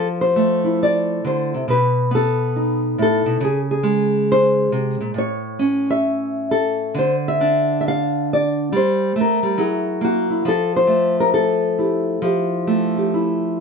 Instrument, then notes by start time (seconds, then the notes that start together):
nylon-string guitar
Already playing: F3
0.21 C5
0.36 A3
0.64 E4
0.83 D5
1.24 D3 C5
1.54 C3
1.68 B2 B4
2.11 B3 A4
2.56 D#4
2.98 A2 A4
3.26 B2
3.40 C#3
3.45 G#4
3.71 G#4
3.83 G#3
4.32 C5
4.72 C3
5.00 A#2
5.14 A2
5.18 C#5
5.59 C#4
5.90 E5
6.51 A4
6.94 D3
6.99 C5
7.28 E5
7.41 D4
7.81 E5
7.88 F5
8.33 D5
8.72 G3 C5
9.16 A3
9.21 A#4
9.43 G3
9.58 F#3 E4 G#4
10.01 A#3 F#4
10.30 E4
10.45 F3 A4
10.76 C5
10.87 A3
11.20 A#4
11.34 A4
11.78 E4 G4
12.22 F3 E4 G4
12.67 A3
12.97 G4
13.14 E4